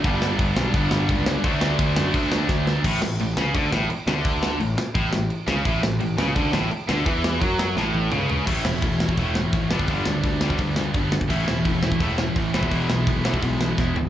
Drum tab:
CC |x---x---x---x---|x---x---x-------|x---x---x---x---|x---x---x---x---|
HH |----------------|----------------|----------------|----------------|
SD |--o---o---o---o-|--o---o---o-o-o-|--o---o---o---o-|--o---o---o---o-|
T1 |----------------|----------------|----------------|----------------|
T2 |----------------|----------------|----------------|----------------|
FT |----------------|----------------|----------------|----------------|
BD |o---o---o---o---|o---o---o---o---|o-------o-------|o-------o-------|

CC |x---x---x---x---|x---x-----------|x---------------|----------------|
HH |----------------|----------------|----o---o---o---|o---o---o---o---|
SD |--o---o---o---o-|--o---o-o-------|--o---o---o---o-|--o---o---o---o-|
T1 |----------------|----------o-----|----------------|----------------|
T2 |----------------|------------o---|----------------|----------------|
FT |----------------|--------------o-|----------------|----------------|
BD |o-------o-------|o---o-----------|o---o--oo---o--o|o---o--oo---o--o|

CC |x---------------|----------------|
HH |----o---o---o---|o---o---o-------|
SD |--o---o---o---o-|--o---o---o-o---|
T1 |----------------|----------------|
T2 |----------------|----------------|
FT |----------------|--------------o-|
BD |o---o--oo---o--o|o---o--oo---o---|